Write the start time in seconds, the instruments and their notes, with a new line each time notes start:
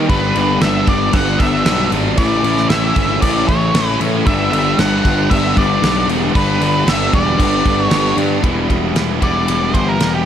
0.08 picked electric bass G1, overdriven electric guitar G2 D3 G3 B3 D4, tonewheel organ B3 D4 G4 B4, lead electric guitar B4, kick, crash
0.35 picked electric bass G1, overdriven electric guitar G3 B3 D4, crash
0.60 picked electric bass G1, distorted electric guitar G2, overdriven electric guitar D3 G3 B3 D4, lead electric guitar E5, snare, crash
0.87 picked electric bass G1, lead electric guitar D5, kick, crash
1.13 picked electric bass G1, overdriven electric guitar G2 D3 G3 B3 D4, lead electric guitar F#5, kick, crash
1.39 picked electric bass G1, overdriven electric guitar G3 B3 D4, lead electric guitar E5, kick, crash
1.65 picked electric bass B1, overdriven electric guitar D3 G3 B3 D4, snare, crash
1.92 picked electric bass G#1, overdriven electric guitar G3 B3 D4, crash
2.17 picked electric bass A1, overdriven electric guitar A2 E3 A3 C#4, tonewheel organ C#3 A3 E4 A4, lead electric guitar D5, kick, crash
2.21 overdriven electric guitar E4
2.43 picked electric bass A1, overdriven electric guitar A3 C#4 E4, crash
2.57 snare
2.69 picked electric bass A1, distorted electric guitar A2, overdriven electric guitar E3 A3 C#4 E4, lead electric guitar E5, snare, crash
2.96 picked electric bass G1, kick, crash
3.22 picked electric bass A1, overdriven electric guitar A2 E3 A3 C#4 E4, lead electric guitar D5, kick, crash
3.48 picked electric bass A1, overdriven electric guitar A3 C#4 E4, lead electric guitar C#5, kick, crash
3.74 picked electric bass A1, overdriven electric guitar E3 A3 C#4 E4, snare, crash
4.00 picked electric bass A2, overdriven electric guitar A3 C#4 E4, crash
4.26 picked electric bass G1, overdriven electric guitar G2 D3 G3 B3 D4, tonewheel organ B3 D4 G4 B4, lead electric guitar E5, kick, crash
4.52 picked electric bass G1, overdriven electric guitar G3 B3 D4, crash
4.78 picked electric bass G1, distorted electric guitar G2, overdriven electric guitar D3 G3 B3 D4, lead electric guitar F#5, snare, crash
5.05 picked electric bass G1, kick, crash
5.30 picked electric bass G1, overdriven electric guitar G2 D3 G3 B3 D4, lead electric guitar E5, kick, crash
5.56 picked electric bass G1, overdriven electric guitar G3 B3 D4, lead electric guitar D5, kick, crash
5.81 picked electric bass B1, overdriven electric guitar D3 G3 B3 D4, snare, crash
6.08 picked electric bass E1, overdriven electric guitar G3 B3 D4, crash
6.33 picked electric bass G1, overdriven electric guitar G2 D3 G3 B3 D4, tonewheel organ B3 D4 G4 B4, lead electric guitar B4, kick, crash
6.59 picked electric bass G1, overdriven electric guitar G3 B3 D4, crash
6.85 picked electric bass G1, distorted electric guitar G2, overdriven electric guitar D3 G3 B3 D4, lead electric guitar E5, snare, crash
7.13 picked electric bass E1, lead electric guitar D5, kick, crash
7.37 picked electric bass G1, overdriven electric guitar G2 D3 G3 B3 D4, kick, crash
7.64 picked electric bass G1, overdriven electric guitar G3 B3 D4, kick, crash
7.81 lead electric guitar C#5
7.90 picked electric bass G1, overdriven electric guitar D3 G3 B3 D4, snare, crash
8.17 picked electric bass G2, overdriven electric guitar G3 B3 D4, crash
8.42 picked electric bass E1, overdriven electric guitar E3 G3 B3 E4, tonewheel organ D4 E4 G4 B4, kick, ride
8.70 kick, ride
8.95 picked electric bass E1, distorted electric guitar E3 G3 B3 E4, snare, ride
9.20 picked electric bass E1, overdriven electric guitar E3 G3 B3 E4, lead electric guitar D5, kick, ride
9.47 picked electric bass E1, distorted electric guitar E3 G3 B3 E4, ride
9.74 picked electric bass G1, distorted electric guitar G3 B3 E4, lead electric guitar C5, kick, ride
9.89 lead electric guitar A#4
10.00 picked electric bass E1, distorted electric guitar E3 G3 B3 E4, snare, ride
10.15 lead electric guitar G4